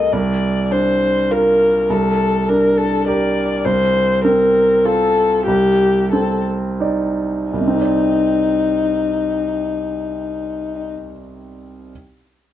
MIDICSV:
0, 0, Header, 1, 4, 480
1, 0, Start_track
1, 0, Tempo, 586510
1, 108, Time_signature, 3, 2, 24, 8
1, 3467, Tempo, 625000
1, 4907, Tempo, 685714
1, 5387, Tempo, 728155
1, 9167, End_track
2, 0, Start_track
2, 0, Title_t, "Violin"
2, 0, Program_c, 0, 40
2, 0, Note_on_c, 0, 75, 54
2, 105, Note_on_c, 0, 74, 60
2, 117, Note_off_c, 0, 75, 0
2, 589, Note_on_c, 0, 72, 57
2, 601, Note_off_c, 0, 74, 0
2, 1070, Note_on_c, 0, 70, 61
2, 1083, Note_off_c, 0, 72, 0
2, 1563, Note_on_c, 0, 69, 61
2, 1575, Note_off_c, 0, 70, 0
2, 2037, Note_on_c, 0, 70, 58
2, 2049, Note_off_c, 0, 69, 0
2, 2272, Note_on_c, 0, 69, 60
2, 2284, Note_off_c, 0, 70, 0
2, 2508, Note_off_c, 0, 69, 0
2, 2513, Note_on_c, 0, 74, 63
2, 2987, Note_on_c, 0, 72, 73
2, 2999, Note_off_c, 0, 74, 0
2, 3465, Note_off_c, 0, 72, 0
2, 3469, Note_on_c, 0, 70, 66
2, 3941, Note_on_c, 0, 69, 69
2, 3953, Note_off_c, 0, 70, 0
2, 4400, Note_off_c, 0, 69, 0
2, 4405, Note_on_c, 0, 67, 67
2, 4893, Note_off_c, 0, 67, 0
2, 4908, Note_on_c, 0, 69, 48
2, 5138, Note_off_c, 0, 69, 0
2, 5866, Note_on_c, 0, 63, 51
2, 8096, Note_off_c, 0, 63, 0
2, 9167, End_track
3, 0, Start_track
3, 0, Title_t, "Grand piano"
3, 0, Program_c, 1, 0
3, 0, Control_c, 1, 64, 127
3, 0, Note_on_c, 1, 36, 35
3, 0, Note_on_c, 1, 69, 26
3, 0, Note_on_c, 1, 70, 24
3, 0, Note_on_c, 1, 72, 28
3, 86, Note_off_c, 1, 36, 0
3, 106, Note_on_c, 1, 36, 41
3, 113, Note_off_c, 1, 69, 0
3, 122, Control_c, 1, 64, 0
3, 124, Note_off_c, 1, 70, 0
3, 126, Note_off_c, 1, 72, 0
3, 246, Control_c, 1, 64, 127
3, 581, Note_on_c, 1, 62, 34
3, 1069, Note_on_c, 1, 65, 35
3, 1073, Note_on_c, 1, 70, 35
3, 1356, Note_off_c, 1, 62, 0
3, 1519, Note_off_c, 1, 65, 0
3, 1520, Note_off_c, 1, 36, 0
3, 1521, Note_off_c, 1, 70, 0
3, 1552, Note_on_c, 1, 36, 36
3, 1570, Control_c, 1, 64, 0
3, 1701, Control_c, 1, 64, 127
3, 2039, Note_on_c, 1, 62, 33
3, 2516, Note_on_c, 1, 67, 35
3, 2519, Note_on_c, 1, 70, 41
3, 2796, Note_off_c, 1, 62, 0
3, 2949, Note_off_c, 1, 36, 0
3, 2955, Note_off_c, 1, 67, 0
3, 2956, Note_off_c, 1, 70, 0
3, 2992, Note_on_c, 1, 36, 41
3, 2998, Control_c, 1, 64, 0
3, 3112, Control_c, 1, 64, 127
3, 3475, Note_on_c, 1, 60, 40
3, 3940, Note_on_c, 1, 65, 41
3, 3947, Note_on_c, 1, 69, 44
3, 4219, Note_off_c, 1, 60, 0
3, 4381, Note_off_c, 1, 36, 0
3, 4382, Note_off_c, 1, 65, 0
3, 4386, Note_off_c, 1, 69, 0
3, 4417, Note_on_c, 1, 36, 45
3, 4424, Control_c, 1, 64, 0
3, 4582, Control_c, 1, 64, 127
3, 4919, Note_on_c, 1, 60, 36
3, 5390, Note_on_c, 1, 63, 32
3, 5398, Note_on_c, 1, 74, 34
3, 5678, Note_off_c, 1, 60, 0
3, 5840, Note_off_c, 1, 63, 0
3, 5842, Note_off_c, 1, 36, 0
3, 5843, Note_off_c, 1, 74, 0
3, 5873, Note_on_c, 1, 36, 26
3, 5878, Control_c, 1, 64, 0
3, 5919, Note_on_c, 1, 48, 29
3, 5966, Note_on_c, 1, 60, 29
3, 6011, Note_on_c, 1, 63, 29
3, 6028, Control_c, 1, 64, 127
3, 6057, Note_on_c, 1, 74, 28
3, 8103, Note_off_c, 1, 36, 0
3, 8148, Note_off_c, 1, 48, 0
3, 8196, Note_off_c, 1, 60, 0
3, 8241, Note_off_c, 1, 63, 0
3, 8287, Note_off_c, 1, 74, 0
3, 8762, Control_c, 1, 64, 0
3, 9167, End_track
4, 0, Start_track
4, 0, Title_t, "Viola"
4, 0, Program_c, 2, 41
4, 0, Note_on_c, 2, 55, 39
4, 104, Note_off_c, 2, 55, 0
4, 9167, End_track
0, 0, End_of_file